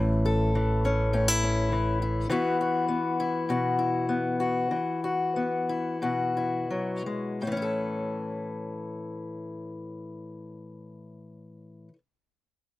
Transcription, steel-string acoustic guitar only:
Already playing: A2 E3 E4
0.26 A4
0.55 E3
0.85 C#4
1.13 A2 C#4
1.28 E4
1.43 C#4
1.72 E3
2.02 E4
2.30 E3 B3 E4 F#4
2.61 F#4
2.88 B3
3.20 E4
3.49 B2 F#4
3.79 E4
4.09 B3
4.40 F#4
4.71 E3
5.04 F#4
5.36 B3
5.69 E4
6.02 B2 F#4
6.37 E4
6.71 F#3
7.06 G#3
7.42 A2
7.47 E3
7.52 C#4
7.57 E4
7.62 A4

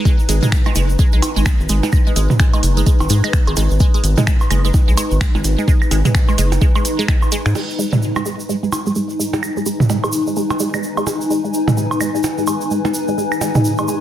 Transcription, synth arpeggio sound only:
0.05 G#3
0.29 G#3
0.43 G#3
0.66 G#3
0.76 G#3
0.99 G#3
1.13 G#3
1.36 G#3
1.69 G#3
1.83 G#3
2.07 G#3
2.16 G#3
2.40 G#3
2.53 G#3
2.77 G#3
2.86 G#3
3.10 G#3
3.24 G#3
3.47 G#3
3.57 G#3
3.80 G#3
3.94 G#3
4.18 G#3
4.27 G#3
4.51 G#3
4.65 G#3
4.88 G#3
4.97 G#3
5.21 G#3
5.35 G#3
5.58 G#3
5.68 G#3
5.91 G#3
6.05 G#3
6.29 G#3
6.38 G#3
6.61 G#3
6.75 G#3
6.99 G#3
7.08 G#3
7.32 G#3
7.46 G#3
7.55 G#3
7.79 G#3
7.93 G#3
8.16 G#3
8.26 G#3
8.49 G#3
8.63 G#3
8.87 G#3
8.96 G#3
9.19 G#3
9.33 G#3
9.57 G#3
9.66 G#3
9.90 G#3
10.04 G#3
10.27 G#3
10.37 G#3
10.60 G#3
10.74 G#3
10.97 G#3
11.07 G#3
11.30 G#3
11.44 G#3
11.68 G#3
11.77 G#3
12.01 G#3
12.15 G#3
12.38 G#3
12.47 G#3
12.71 G#3
12.85 G#3
13.08 G#3
13.18 G#3
13.41 G#3
13.55 G#3
13.79 G#3
13.88 G#3

